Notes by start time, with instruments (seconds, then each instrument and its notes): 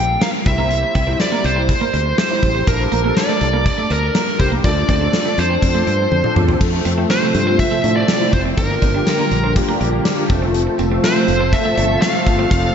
Already playing: fingered electric bass A#1, grand piano G3 A#3 D4 A4, lead electric guitar G5
0.21 clean electric guitar A#3, lead electric guitar F5, snare, closed hi-hat
0.34 muted clean electric guitar stroke
0.46 fingered electric bass C2, grand piano G3 C4 E4 C5, lead electric guitar E5, kick, closed hi-hat
0.58 clean electric guitar A#3
0.71 closed hi-hat
0.83 muted clean electric guitar stroke
0.95 fingered electric bass C2, clean electric guitar C4, kick, closed hi-hat
1.07 grand piano G3 C4 E4 C5, clean electric guitar C4
1.20 lead electric guitar D5, snare, closed hi-hat
1.32 clean electric guitar A#3
1.44 fingered electric bass C2, lead electric guitar C5, muted clean electric guitar stroke, closed hi-hat
1.56 clean electric guitar C4
1.69 muted clean electric guitar stroke, kick, closed hi-hat
1.81 clean electric guitar A#3
1.93 fingered electric bass D2, clean electric guitar D4, closed hi-hat
2.18 lead electric guitar C5, muted clean electric guitar stroke, snare, closed hi-hat
2.30 grand piano G3 C4 E4 C5
2.43 fingered electric bass A1, clean electric guitar C4, kick, closed hi-hat
2.55 clean electric guitar C4
2.67 fingered electric bass A#1, grand piano G3 A#3 D4 A4, lead electric guitar A#4, kick, closed hi-hat
2.80 muted clean electric guitar stroke
2.92 fingered electric bass A#1, clean electric guitar A#3, closed hi-hat
3.04 grand piano G3 A#3 D4 A4, clean electric guitar A#3
3.17 lead electric guitar D5, snare, closed hi-hat
3.29 clean electric guitar A3
3.41 fingered electric bass C2, muted clean electric guitar stroke, closed hi-hat
3.53 clean electric guitar A#3
3.66 lead electric guitar D5, muted clean electric guitar stroke, kick, closed hi-hat
3.78 clean electric guitar A3
3.90 fingered electric bass D2, clean electric guitar C4, lead electric guitar A#4, closed hi-hat
4.15 clean electric guitar A#3, snare, closed hi-hat
4.27 muted clean electric guitar stroke
4.39 fingered electric bass C2, grand piano G3 A#3 D4 G4, lead electric guitar C5, kick, closed hi-hat
4.52 clean electric guitar A#3
4.64 fingered electric bass D2, grand piano F3 A3 D4 A4, lead electric guitar D5, kick, closed hi-hat
4.77 muted clean electric guitar stroke
4.89 fingered electric bass D2, clean electric guitar C4, lead electric guitar D5, kick, closed hi-hat
5.01 grand piano F3 A3 D4 A4, clean electric guitar C4
5.13 snare, closed hi-hat
5.26 clean electric guitar A3
5.38 fingered electric bass F2, lead electric guitar C5, muted clean electric guitar stroke, closed hi-hat
5.50 clean electric guitar C4
5.62 fingered electric bass F2, grand piano F3 C4 D4 A4, muted clean electric guitar stroke, kick, closed hi-hat
5.75 clean electric guitar A3
5.87 fingered electric bass G2, clean electric guitar D4, closed hi-hat
6.12 fingered electric bass F2, muted clean electric guitar stroke, high tom
6.24 grand piano F3 C4 D4 A4, mid tom
6.36 fingered electric bass E2, clean electric guitar C4, mid tom
6.49 clean electric guitar C4, floor tom
6.60 fingered electric bass F2, analog synth pad C3 F3 A3 F4 A4, grand piano F3 A3 C4 A4, kick, crash, tambourine
6.73 muted clean electric guitar stroke
6.85 fingered electric bass F2, clean electric guitar C4, closed hi-hat, tambourine
6.97 grand piano F3 A3 C4 C5, clean electric guitar C4
7.10 lead electric guitar C5, snare, closed hi-hat, tambourine
7.22 clean electric guitar A3
7.34 fingered electric bass G2, muted clean electric guitar stroke, closed hi-hat, tambourine
7.47 clean electric guitar C4
7.59 grand piano F3 A3 C4 F4, lead electric guitar E5, muted clean electric guitar stroke, kick, closed hi-hat, tambourine
7.72 clean electric guitar A3
7.83 fingered electric bass A2, grand piano F3 A3 C4 A4, clean electric guitar D4, closed hi-hat
7.96 lead electric guitar D5
8.08 clean electric guitar C4, snare, closed hi-hat, tambourine
8.20 grand piano F3 A3 C4 E4, muted clean electric guitar stroke
8.33 fingered electric bass F1, lead electric guitar C5, kick, closed hi-hat, tambourine
8.45 clean electric guitar C4
8.57 fingered electric bass G1, analog synth pad D3 G3 A#3 A#4, grand piano F3 A#3 D4 G4, lead electric guitar A#4, kick, closed hi-hat, tambourine
8.70 muted clean electric guitar stroke
8.82 fingered electric bass G1, clean electric guitar D4, kick, closed hi-hat, tambourine
8.94 grand piano F3 A#3 D4 G4, clean electric guitar D4
9.07 snare, closed hi-hat, tambourine
9.19 clean electric guitar A#3
9.31 fingered electric bass A#1, muted clean electric guitar stroke, closed hi-hat, tambourine
9.44 clean electric guitar C4
9.55 grand piano F3 A#3 D4 G4, muted clean electric guitar stroke, kick, closed hi-hat, tambourine
9.69 clean electric guitar A#3
9.80 fingered electric bass A#1, grand piano F3 A#3 D4 G4, clean electric guitar D4, closed hi-hat, tambourine
10.05 muted clean electric guitar stroke, snare, closed hi-hat, tambourine
10.17 grand piano F3 A#3 D4 G4
10.29 fingered electric bass F1, analog synth pad C3 F3 A3 A4, grand piano F3 A3 C4 A4, clean electric guitar C4, kick, closed hi-hat, tambourine
10.42 clean electric guitar C4
10.54 closed hi-hat, tambourine
10.67 muted clean electric guitar stroke
10.79 fingered electric bass F1, clean electric guitar C4, closed hi-hat, tambourine
10.91 grand piano F3 A3 C4 A4, clean electric guitar C4
11.04 lead electric guitar C5, snare, closed hi-hat, tambourine
11.16 clean electric guitar A3
11.28 fingered electric bass F1, muted clean electric guitar stroke, closed hi-hat, tambourine
11.41 clean electric guitar C4
11.52 grand piano F3 A3 C4 A4, lead electric guitar E5, muted clean electric guitar stroke, kick, closed hi-hat
11.65 clean electric guitar A3
11.77 fingered electric bass G1, grand piano F3 A3 C4 A4, clean electric guitar D4, closed hi-hat, tambourine
12.02 clean electric guitar C4, lead electric guitar F5, snare, closed hi-hat, tambourine
12.14 grand piano F3 A3 C4 A4, muted clean electric guitar stroke
12.26 fingered electric bass G1, kick, closed hi-hat, tambourine
12.39 clean electric guitar C4
12.50 fingered electric bass F1, grand piano F3 A3 C4 A4, lead electric guitar F5, kick, closed hi-hat, tambourine
12.63 muted clean electric guitar stroke